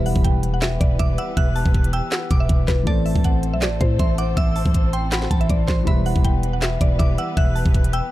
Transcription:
Already playing: 808-style bass E1, grand piano E3 G3 B3 G4 B4, string section E3 B3 G4 B4, synth bell B5, impact
0.06 synth pluck F#5, open hi-hat
0.16 808-style bass E1, kick
0.24 synth pluck G5, kick, closed hi-hat
0.43 closed hi-hat
0.54 synth pluck F#5
0.62 synth pluck E5, snare, clap, closed hi-hat
0.81 808-style bass E1, synth pluck D5, kick, closed hi-hat
0.99 808-style bass E1, synth pluck E5, synth bell D6, kick, closed hi-hat
1.18 synth pluck F#5, synth bell E6, closed hi-hat
1.37 808-style bass E1, synth pluck E5, synth bell F#6, kick, closed hi-hat
1.56 synth pluck A5, open hi-hat
1.66 808-style bass E1, kick
1.74 kick, closed hi-hat
1.84 closed hi-hat
1.93 synth pluck G5, synth bell E6, closed hi-hat
2.12 synth pluck F#5, snare, clap, closed hi-hat
2.31 808-style bass E1, synth bell D6, kick, closed hi-hat
2.40 synth pluck E5
2.49 808-style bass E1, kick, closed hi-hat
2.68 808-style bass E1, synth pluck B4, kick, snare, clap, closed hi-hat
2.83 808-style bass A1, grand piano E3 A3 C4, string section E3 C4 A4 C5, synth pluck D5, synth bell A5, kick, closed hi-hat
2.89 grand piano A4 C5
3.06 synth pluck E5, open hi-hat
3.16 808-style bass A1, kick
3.24 synth pluck F#5, kick, closed hi-hat
3.43 closed hi-hat
3.53 808-style bass B1, synth pluck E5
3.62 synth pluck D5, snare, clap, closed hi-hat
3.67 808-style bass A1
3.81 808-style bass A2, synth pluck C5, kick, closed hi-hat
3.99 808-style bass A1, synth pluck E5, synth bell C6, kick, closed hi-hat
4.18 synth pluck F#5, synth bell D6, closed hi-hat
4.37 808-style bass A1, synth pluck E5, synth bell E6, kick, closed hi-hat
4.56 synth pluck A5, open hi-hat
4.66 808-style bass A1, kick
4.74 kick, closed hi-hat
4.93 synth pluck G5, synth bell C6, closed hi-hat
5.12 synth pluck F#5, synth bell B5, snare, clap, closed hi-hat
5.22 snare
5.31 808-style bass A1, synth bell A5, kick, closed hi-hat
5.41 synth pluck E5, closed hi-hat
5.49 808-style bass A1, synth pluck D5, kick, closed hi-hat
5.68 808-style bass A1, synth pluck C5, synth bell C6, kick, snare, clap, closed hi-hat
5.83 808-style bass E1, grand piano E3 G3 B3, string section B3 G4 B4, synth bell B5, kick, closed hi-hat
5.88 grand piano G4 B4, synth pluck E5
6.06 synth pluck F#5, open hi-hat
6.16 808-style bass E1, kick
6.25 synth pluck G5, kick, closed hi-hat
6.43 closed hi-hat
6.53 synth pluck F#5
6.62 synth pluck E5, snare, clap, closed hi-hat
6.81 808-style bass E1, synth pluck D5, kick, closed hi-hat
6.99 808-style bass E1, synth pluck E5, synth bell D6, kick, closed hi-hat
7.18 synth pluck F#5, synth bell E6, closed hi-hat
7.37 808-style bass E1, synth pluck E5, synth bell F#6, kick, closed hi-hat
7.55 synth pluck A5, open hi-hat
7.66 808-style bass E1, kick
7.74 kick, closed hi-hat
7.84 closed hi-hat
7.93 synth pluck G5, synth bell E6, closed hi-hat

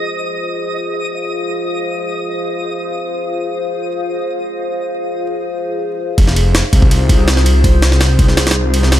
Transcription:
Already playing: ambient pad F4 G#4 C5 D#5, synth texture D#5 D#6
0.33 ambient pad F5
6.18 detuned saw bass F1, ambient pad D#4 F4 G#4 C5, kick, ride
6.28 snare
6.36 ride
6.55 snare, ride
6.73 detuned saw bass C2, kick, ride
6.82 kick
6.91 ride
7.09 kick, ride
7.28 snare, ride
7.37 snare
7.46 ride
7.64 kick, ride
7.82 snare, ride
7.92 snare
8.01 snare, ride
8.19 detuned saw bass C2, kick, ride
8.28 snare
8.37 snare, ride
8.47 snare, ride
8.51 snare, ride
8.74 ride
8.83 snare
8.92 snare, ride

